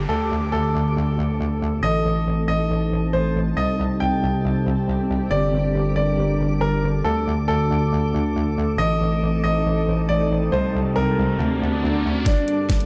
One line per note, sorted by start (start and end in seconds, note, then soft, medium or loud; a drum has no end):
0.00 1.79 D4 medium
0.00 1.79 A4 medium
0.00 0.78 A5 medium
0.00 2.52 D6 medium
0.00 downlifter medium
0.09 1.80 D2 medium
0.09 1.81 D3 medium
0.09 1.81 F#4 medium
0.09 0.34 A4 medium
0.19 4.26 A4 medium
0.52 1.74 A4 medium
1.83 3.54 A1 medium
1.83 3.55 A3 medium
1.83 5.27 C4 medium
1.83 5.27 D#4 medium
1.83 2.39 D#5 loud
2.28 4.26 A5 medium
2.38 3.57 D#6 medium
2.48 3.04 D#5 medium
3.13 3.38 C5 medium
3.57 5.28 C2 medium
3.57 5.29 C3 medium
3.57 6.00 C4 medium
3.57 5.29 G4 medium
3.57 3.81 D#5 medium
4.00 5.22 G5 medium
4.15 7.05 G4 medium
4.35 9.48 D6 medium
5.30 7.02 G1 medium
5.30 7.03 G3 medium
5.30 8.75 D4 medium
5.30 8.75 A4 medium
5.30 7.03 A#4 medium
5.30 5.87 D5 loud
5.96 6.52 D5 medium
6.09 7.74 A5 medium
6.61 6.86 A#4 medium
7.04 8.76 D2 medium
7.04 8.77 D3 medium
7.04 8.77 F#4 medium
7.04 7.29 A4 medium
7.25 10.87 A4 medium
7.48 8.70 A4 medium
8.78 10.50 A1 medium
8.78 10.51 A3 medium
8.78 11.37 C4 medium
8.78 11.37 D#4 medium
8.78 9.35 D#5 loud
8.78 riser medium
9.25 10.52 D#6 medium
9.44 10.00 D#5 medium
9.57 10.87 A5 medium
10.09 10.33 D5 medium
10.52 11.37 C2 medium
10.52 11.38 C3 medium
10.52 11.74 C4 medium
10.52 11.38 G4 medium
10.52 10.77 C5 medium
10.91 12.86 D6 medium
10.96 12.17 A#4 loud
11.39 12.24 D2 medium
11.39 12.25 D3 medium
11.39 12.86 D4 medium
11.39 12.25 D4 medium
11.39 12.25 F#4 medium
11.39 12.25 A5 medium
11.78 12.86 A5 medium
12.26 12.86 G2 medium
12.26 12.86 G3 medium
12.26 12.86 A#3 medium
12.26 12.83 D4 medium
12.26 12.86 G4 medium
12.26 12.86 A4 medium
12.26 12.83 D5 medium
12.26 kick medium
12.26 snare soft
12.26 closed hi-hat medium
12.26 riser medium
12.48 closed hi-hat medium
12.70 kick medium
12.70 snare medium
12.70 closed hi-hat medium
12.80 closed hi-hat soft